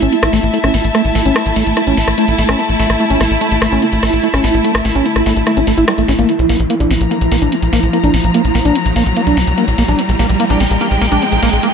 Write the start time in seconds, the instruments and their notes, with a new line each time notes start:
Already playing: string section A3 E4 E5, synth texture A3 E4, riser
0.02 analog synth bass A1, acid bass C#4, string section A5, closed hi-hat
0.12 acid bass G3, closed hi-hat
0.23 analog synth bass A1, cross-stick, closed hi-hat
0.33 analog synth bass A1, acid bass A3, open hi-hat
0.43 analog synth bass A1, closed hi-hat
0.54 acid bass A3, closed hi-hat
0.64 analog synth bass A1, acid bass C#4, cross-stick, closed hi-hat
0.74 analog synth bass A1, acid bass G3, open hi-hat
0.84 analog synth bass A1, closed hi-hat
0.95 acid bass A3, cross-stick, closed hi-hat
1.05 analog synth bass A1, closed hi-hat
1.15 analog synth bass A1, acid bass A3, open hi-hat
1.25 analog synth bass A1, acid bass C#4, closed hi-hat
1.36 acid bass G3, cross-stick, closed hi-hat
1.46 analog synth bass A1, closed hi-hat
1.56 analog synth bass A1, acid bass A3, open hi-hat
1.67 analog synth bass A1, closed hi-hat
1.77 acid bass A3, cross-stick, closed hi-hat
1.87 analog synth bass A1, acid bass C#4, closed hi-hat
1.97 analog synth bass A1, acid bass G3, open hi-hat
2.08 analog synth bass A1, cross-stick, closed hi-hat
2.18 acid bass A3, closed hi-hat
2.28 analog synth bass A1, closed hi-hat
2.38 analog synth bass A1, acid bass A3, open hi-hat
2.49 analog synth bass A1, acid bass C#4, cross-stick, closed hi-hat
2.59 acid bass G3, closed hi-hat
2.69 analog synth bass A1, closed hi-hat
2.79 analog synth bass A1, acid bass A3, open hi-hat
2.90 analog synth bass A1, cross-stick, closed hi-hat
3.00 acid bass A3, closed hi-hat
3.10 analog synth bass A1, acid bass C#4, closed hi-hat
3.21 analog synth bass A1, acid bass G3, cross-stick, open hi-hat
3.31 analog synth bass A1, closed hi-hat
3.41 acid bass A3, closed hi-hat
3.51 analog synth bass A1, closed hi-hat
3.62 analog synth bass A1, acid bass A3, cross-stick, open hi-hat
3.72 analog synth bass A1, acid bass C#4, closed hi-hat
3.82 acid bass G3, closed hi-hat
3.93 analog synth bass A1, closed hi-hat
4.03 analog synth bass A1, acid bass A3, cross-stick, open hi-hat
4.13 analog synth bass A1, closed hi-hat
4.23 acid bass A3, closed hi-hat
4.34 analog synth bass A1, acid bass C#4, cross-stick, closed hi-hat
4.44 analog synth bass A1, acid bass G3, open hi-hat
4.54 analog synth bass A1, closed hi-hat
4.64 acid bass A3, closed hi-hat
4.75 analog synth bass A1, cross-stick, closed hi-hat
4.85 analog synth bass A1, acid bass A3, open hi-hat
4.95 analog synth bass A1, acid bass C#4, closed hi-hat
5.06 acid bass G3, closed hi-hat
5.16 analog synth bass A1, cross-stick, closed hi-hat
5.26 analog synth bass A1, acid bass A3, open hi-hat
5.36 analog synth bass A1, closed hi-hat
5.47 acid bass A3, cross-stick, closed hi-hat
5.57 analog synth bass A1, acid bass C#4, closed hi-hat
5.67 analog synth bass A1, acid bass A3, open hi-hat
5.78 analog synth bass A1, acid bass E4, closed hi-hat
5.88 acid bass G3, cross-stick, closed hi-hat
5.98 analog synth bass A1, acid bass A3, closed hi-hat
6.08 analog synth bass A1, acid bass C#4, open hi-hat
6.19 analog synth bass A1, acid bass A#3, closed hi-hat
6.29 acid bass A3, closed hi-hat
6.36 analog synth bass A#1, string section F3, closed hi-hat
6.49 analog synth bass A#1, acid bass A#3, open hi-hat
6.60 analog synth bass A#1, closed hi-hat
6.70 acid bass A#3, closed hi-hat
6.80 analog synth bass A#1, acid bass D4, closed hi-hat
6.90 analog synth bass A#1, acid bass A3, open hi-hat
6.99 analog synth bass A#1, string section A#5, closed hi-hat
7.11 acid bass A#3, closed hi-hat
7.21 analog synth bass A#1, closed hi-hat
7.32 analog synth bass A#1, acid bass A#3, open hi-hat
7.42 analog synth bass A#1, acid bass D4, closed hi-hat
7.52 acid bass A3, closed hi-hat
7.62 analog synth bass A#1, closed hi-hat
7.73 analog synth bass A#1, acid bass A#3, open hi-hat
7.83 analog synth bass A#1, closed hi-hat
7.93 acid bass A#3, closed hi-hat
8.03 analog synth bass A#1, acid bass D4, closed hi-hat
8.14 analog synth bass A#1, acid bass A3, open hi-hat
8.24 analog synth bass A#1, closed hi-hat
8.34 acid bass A#3, closed hi-hat
8.45 analog synth bass A#1, closed hi-hat
8.55 analog synth bass A#1, acid bass A#3, open hi-hat
8.65 analog synth bass A#1, acid bass D4, closed hi-hat
8.75 acid bass A3, closed hi-hat
8.86 analog synth bass A#1, closed hi-hat
8.96 analog synth bass A#1, acid bass A#3, open hi-hat
9.06 analog synth bass A#1, closed hi-hat
9.17 acid bass A#3, closed hi-hat
9.27 analog synth bass C2, acid bass D4, closed hi-hat
9.37 analog synth bass C2, acid bass A3, open hi-hat
9.47 analog synth bass C2, closed hi-hat
9.58 acid bass A#3, closed hi-hat
9.68 analog synth bass A#1, closed hi-hat
9.78 analog synth bass A#1, acid bass A#3, open hi-hat
9.88 analog synth bass A#1, acid bass D4, closed hi-hat
9.99 acid bass A3, closed hi-hat
10.09 analog synth bass A#1, closed hi-hat
10.19 analog synth bass A#1, acid bass A#3, open hi-hat
10.30 analog synth bass A#1, closed hi-hat
10.40 acid bass A#3, closed hi-hat
10.49 analog synth bass A#1, acid bass D4, string section G5, closed hi-hat
10.60 analog synth bass A#1, acid bass A3, open hi-hat
10.71 analog synth bass A#1, closed hi-hat
10.81 acid bass A#3, closed hi-hat
10.91 analog synth bass A#1, closed hi-hat
11.01 analog synth bass A#1, acid bass A#3, open hi-hat
11.12 analog synth bass A#1, acid bass D4, closed hi-hat
11.22 acid bass A3, closed hi-hat
11.32 analog synth bass A#1, closed hi-hat
11.43 analog synth bass A#1, acid bass A#3, open hi-hat
11.53 analog synth bass A#1, closed hi-hat
11.63 acid bass A#3, closed hi-hat